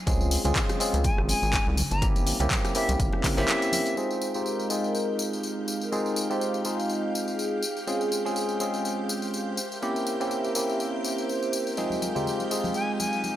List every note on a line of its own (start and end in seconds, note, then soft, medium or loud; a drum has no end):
0.07 0.38 C#2 loud
0.07 0.42 G#3 medium
0.07 0.42 C4 medium
0.07 0.42 C#4 medium
0.07 0.42 F4 medium
0.07 0.42 G#4 loud
0.07 kick loud
0.07 closed hi-hat medium
0.07 tambourine medium
0.07 muted conga medium
0.20 tambourine soft
0.20 high conga medium
0.31 open hi-hat loud
0.31 tambourine medium
0.45 0.52 C#2 medium
0.45 0.77 G#3 medium
0.45 0.77 C4 medium
0.45 0.78 C#4 medium
0.45 0.78 F4 medium
0.45 0.78 G#4 medium
0.45 closed hi-hat medium
0.45 tambourine soft
0.45 muted conga medium
0.45 low conga medium
0.56 kick loud
0.56 clap loud
0.56 closed hi-hat medium
0.56 tambourine soft
0.56 high conga medium
0.69 cross-stick medium
0.69 closed hi-hat soft
0.69 tambourine soft
0.69 muted conga medium
0.79 1.76 G#3 medium
0.79 1.76 C4 medium
0.79 1.76 C#4 medium
0.79 1.77 F4 medium
0.79 1.77 G#4 medium
0.79 open hi-hat medium
0.79 tambourine medium
0.94 1.09 C#2 medium
0.94 closed hi-hat medium
0.94 tambourine soft
0.94 high conga medium
1.04 1.22 G#5 medium
1.04 kick loud
1.04 closed hi-hat medium
1.04 tambourine medium
1.04 muted conga soft
1.18 1.34 G#1 loud
1.18 cross-stick medium
1.28 1.67 G#5 loud
1.28 open hi-hat loud
1.28 tambourine medium
1.28 muted conga medium
1.28 high conga medium
1.42 1.58 G#1 medium
1.42 tambourine soft
1.53 kick loud
1.53 clap loud
1.53 closed hi-hat medium
1.53 tambourine soft
1.67 1.83 C2 medium
1.67 muted conga medium
1.77 open hi-hat medium
1.77 tambourine medium
1.77 high conga medium
1.77 low conga medium
1.91 2.33 G1 medium
1.91 2.06 A#5 medium
1.91 closed hi-hat soft
1.91 tambourine soft
1.91 muted conga medium
1.91 low conga medium
2.02 2.37 A#3 medium
2.02 2.37 C4 medium
2.02 2.37 C#4 medium
2.02 2.37 E4 medium
2.02 2.37 G4 loud
2.02 kick loud
2.02 closed hi-hat medium
2.02 tambourine soft
2.15 closed hi-hat soft
2.15 tambourine soft
2.15 high conga medium
2.27 open hi-hat loud
2.27 tambourine medium
2.27 muted conga medium
2.40 2.47 C2 medium
2.40 2.73 A#3 medium
2.40 2.73 C4 medium
2.40 2.73 C#4 medium
2.40 2.73 E4 medium
2.40 2.73 G4 medium
2.40 closed hi-hat medium
2.40 tambourine soft
2.40 low conga loud
2.51 kick loud
2.51 clap loud
2.51 closed hi-hat medium
2.51 tambourine medium
2.51 muted conga medium
2.51 high conga medium
2.65 cross-stick medium
2.65 closed hi-hat soft
2.65 tambourine soft
2.75 3.35 A#3 medium
2.75 3.35 C4 medium
2.75 3.35 C#4 medium
2.75 3.35 E4 medium
2.75 3.35 G4 medium
2.75 2.92 E5 medium
2.75 open hi-hat medium
2.75 tambourine medium
2.88 2.96 C2 medium
2.88 closed hi-hat medium
2.88 tambourine soft
2.88 muted conga medium
2.88 high conga medium
3.00 3.09 G1 medium
3.00 kick loud
3.00 closed hi-hat medium
3.00 tambourine medium
3.13 cross-stick medium
3.13 muted conga medium
3.24 kick medium
3.24 clap medium
3.24 open hi-hat loud
3.24 tambourine medium
3.24 high conga medium
3.24 low conga medium
3.37 3.45 G1 medium
3.37 3.94 A#3 medium
3.37 3.94 C4 medium
3.37 3.95 C#4 medium
3.37 3.95 E4 medium
3.37 3.95 G4 loud
3.37 3.97 E5 loud
3.37 tambourine soft
3.48 clap loud
3.48 closed hi-hat medium
3.48 tambourine medium
3.48 muted conga medium
3.62 closed hi-hat soft
3.62 tambourine soft
3.72 open hi-hat medium
3.72 tambourine medium
3.72 muted conga medium
3.72 high conga medium
3.86 closed hi-hat soft
3.86 tambourine soft
3.97 4.32 G#3 medium
3.97 7.59 G#3 medium
3.97 4.32 C4 medium
3.97 4.32 D#4 medium
3.97 7.59 D#4 medium
3.97 4.32 F4 medium
3.97 13.36 G4 medium
3.97 4.32 G#4 medium
3.97 4.38 C5 loud
3.97 9.54 F5 medium
3.97 13.36 G6 medium
3.97 tambourine soft
4.11 tambourine soft
4.22 tambourine medium
4.34 4.68 G#3 medium
4.34 4.68 C4 medium
4.34 4.68 D#4 medium
4.34 4.68 F4 medium
4.34 4.68 G4 medium
4.34 tambourine soft
4.46 4.76 A#4 medium
4.46 tambourine soft
4.60 tambourine soft
4.70 5.89 G#3 medium
4.70 5.90 C4 medium
4.70 5.90 D#4 medium
4.70 5.90 F4 medium
4.70 5.90 G#4 medium
4.70 tambourine medium
4.84 5.22 A#4 medium
4.84 tambourine soft
4.95 tambourine soft
5.19 open hi-hat loud
5.19 tambourine medium
5.33 tambourine soft
5.43 tambourine soft
5.68 open hi-hat medium
5.68 tambourine medium
5.81 6.20 A#4 medium
5.81 tambourine soft
5.92 6.27 G#3 medium
5.92 6.27 C4 medium
5.92 6.27 D#4 medium
5.92 6.27 F4 medium
5.92 6.27 G#4 medium
5.92 tambourine soft
6.06 tambourine soft
6.16 open hi-hat loud
6.16 tambourine medium
6.30 6.63 G#3 medium
6.30 6.63 C4 medium
6.30 6.63 D#4 medium
6.30 6.63 F4 medium
6.30 6.63 G4 medium
6.30 6.59 C5 medium
6.30 tambourine soft
6.41 tambourine medium
6.54 tambourine soft
6.65 7.61 G#3 medium
6.65 7.62 C4 medium
6.65 7.62 D#4 medium
6.65 7.62 F4 medium
6.65 7.62 G#4 medium
6.65 tambourine medium
6.80 tambourine soft
6.89 tambourine soft
7.14 open hi-hat loud
7.14 tambourine medium
7.28 7.79 G#4 medium
7.28 tambourine soft
7.39 tambourine medium
7.63 11.74 C5 medium
7.63 open hi-hat medium
7.63 tambourine medium
7.77 tambourine soft
7.87 8.22 G#3 medium
7.87 8.22 C4 medium
7.87 8.22 C#4 medium
7.87 8.22 F4 medium
7.87 8.28 G#4 loud
7.87 8.22 G#4 medium
7.87 tambourine medium
8.01 tambourine soft
8.12 open hi-hat loud
8.12 tambourine medium
8.25 8.58 G#3 medium
8.25 8.58 C4 medium
8.25 8.58 C#4 medium
8.25 8.58 F4 medium
8.25 8.58 G#4 medium
8.25 tambourine soft
8.36 8.66 G#4 medium
8.36 tambourine medium
8.49 tambourine soft
8.60 9.57 G#3 medium
8.60 9.57 C4 medium
8.60 9.57 C#4 medium
8.60 9.57 F4 medium
8.60 9.57 G#4 medium
8.60 open hi-hat medium
8.60 tambourine medium
8.74 9.13 G#4 loud
8.74 tambourine soft
8.85 tambourine medium
9.09 open hi-hat loud
9.09 tambourine medium
9.22 tambourine soft
9.34 tambourine medium
9.57 11.76 A#4 medium
9.57 11.76 E5 medium
9.57 open hi-hat medium
9.57 tambourine medium
9.72 10.10 G4 medium
9.72 tambourine soft
9.82 10.17 A#3 medium
9.82 10.17 C4 medium
9.82 10.17 C#4 medium
9.82 10.17 E4 medium
9.82 10.17 G4 medium
9.82 tambourine soft
9.96 tambourine soft
10.07 open hi-hat loud
10.07 tambourine medium
10.20 10.53 A#3 medium
10.20 10.53 C4 medium
10.20 10.53 C#4 medium
10.20 10.53 E4 medium
10.20 10.49 G4 medium
10.20 10.53 G4 medium
10.20 tambourine soft
10.31 tambourine soft
10.44 tambourine soft
10.55 11.75 A#3 medium
10.55 11.75 C4 medium
10.55 11.75 C#4 medium
10.55 11.75 E4 medium
10.55 11.75 G4 medium
10.55 open hi-hat medium
10.55 tambourine medium
10.69 tambourine soft
10.80 tambourine medium
11.04 open hi-hat loud
11.04 tambourine medium
11.18 11.69 C5 medium
11.18 tambourine soft
11.29 tambourine soft
11.43 tambourine soft
11.53 open hi-hat medium
11.53 tambourine medium
11.67 tambourine soft
11.77 12.12 G#3 medium
11.77 13.36 G#3 medium
11.77 12.12 C4 medium
11.77 12.12 D#4 medium
11.77 13.36 D#4 medium
11.77 12.13 F4 medium
11.77 12.13 G#4 medium
11.77 13.36 F5 medium
11.77 tambourine soft
11.77 muted conga soft
11.90 tambourine soft
11.90 high conga medium
12.02 open hi-hat loud
12.02 tambourine medium
12.02 muted conga medium
12.15 12.48 G#3 medium
12.15 12.48 C4 medium
12.15 12.48 D#4 medium
12.15 12.48 F4 medium
12.15 12.48 G4 medium
12.15 tambourine soft
12.15 low conga medium
12.26 tambourine soft
12.26 high conga medium
12.40 tambourine soft
12.40 muted conga soft
12.50 13.36 G#3 medium
12.50 13.36 C4 medium
12.50 13.36 D#4 medium
12.50 13.36 F4 medium
12.50 13.36 G#4 medium
12.50 open hi-hat medium
12.50 tambourine medium
12.64 tambourine soft
12.64 muted conga medium
12.64 high conga medium
12.74 12.92 G#5 medium
12.74 tambourine soft
13.00 13.36 G#5 medium
13.00 open hi-hat loud
13.00 tambourine medium
13.00 muted conga soft
13.00 high conga medium
13.13 tambourine soft
13.24 tambourine soft
13.24 muted conga medium